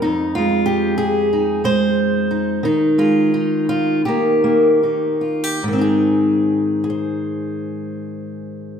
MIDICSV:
0, 0, Header, 1, 2, 480
1, 0, Start_track
1, 0, Key_signature, -4, "major"
1, 0, Tempo, 638978
1, 45, Time_signature, 4, 2, 24, 8
1, 1486, Tempo, 679502
1, 2446, Tempo, 722892
1, 2926, Tempo, 766284
1, 3406, Tempo, 806452
1, 5770, End_track
2, 0, Start_track
2, 0, Title_t, "Steel-string acoustic guitar"
2, 0, Program_c, 0, 25
2, 15, Note_on_c, 0, 63, 63
2, 32, Note_on_c, 0, 41, 59
2, 263, Note_on_c, 0, 65, 73
2, 285, Note_on_c, 0, 56, 51
2, 490, Note_off_c, 0, 63, 0
2, 493, Note_on_c, 0, 67, 71
2, 731, Note_off_c, 0, 65, 0
2, 734, Note_on_c, 0, 68, 71
2, 984, Note_off_c, 0, 67, 0
2, 998, Note_on_c, 0, 63, 40
2, 1224, Note_off_c, 0, 56, 0
2, 1229, Note_off_c, 0, 68, 0
2, 1233, Note_on_c, 0, 56, 50
2, 1239, Note_on_c, 0, 72, 76
2, 1715, Note_off_c, 0, 63, 0
2, 1718, Note_on_c, 0, 63, 35
2, 1926, Note_off_c, 0, 56, 0
2, 1947, Note_on_c, 0, 51, 55
2, 1952, Note_off_c, 0, 41, 0
2, 1957, Note_off_c, 0, 63, 0
2, 1957, Note_off_c, 0, 72, 0
2, 1960, Note_on_c, 0, 63, 56
2, 2196, Note_on_c, 0, 56, 42
2, 2199, Note_on_c, 0, 65, 63
2, 2439, Note_off_c, 0, 63, 0
2, 2447, Note_on_c, 0, 63, 53
2, 2673, Note_off_c, 0, 65, 0
2, 2681, Note_on_c, 0, 65, 66
2, 2919, Note_off_c, 0, 65, 0
2, 2921, Note_off_c, 0, 51, 0
2, 2921, Note_on_c, 0, 67, 64
2, 2925, Note_off_c, 0, 56, 0
2, 2927, Note_off_c, 0, 63, 0
2, 2933, Note_on_c, 0, 51, 50
2, 2940, Note_on_c, 0, 58, 32
2, 2943, Note_on_c, 0, 63, 29
2, 3156, Note_off_c, 0, 58, 0
2, 3163, Note_on_c, 0, 58, 44
2, 3403, Note_off_c, 0, 63, 0
2, 3410, Note_on_c, 0, 63, 31
2, 3633, Note_off_c, 0, 67, 0
2, 3635, Note_on_c, 0, 65, 29
2, 3769, Note_off_c, 0, 65, 0
2, 3769, Note_on_c, 0, 67, 26
2, 3858, Note_off_c, 0, 58, 0
2, 3859, Note_off_c, 0, 63, 0
2, 3885, Note_on_c, 0, 44, 46
2, 3889, Note_off_c, 0, 67, 0
2, 3906, Note_off_c, 0, 51, 0
2, 3913, Note_on_c, 0, 51, 42
2, 3944, Note_on_c, 0, 60, 43
2, 3976, Note_on_c, 0, 63, 36
2, 3994, Note_on_c, 0, 68, 55
2, 4596, Note_off_c, 0, 68, 0
2, 4601, Note_off_c, 0, 60, 0
2, 4604, Note_on_c, 0, 68, 43
2, 4637, Note_off_c, 0, 63, 0
2, 4639, Note_on_c, 0, 72, 45
2, 5770, Note_off_c, 0, 44, 0
2, 5770, Note_off_c, 0, 51, 0
2, 5770, Note_off_c, 0, 68, 0
2, 5770, Note_off_c, 0, 72, 0
2, 5770, End_track
0, 0, End_of_file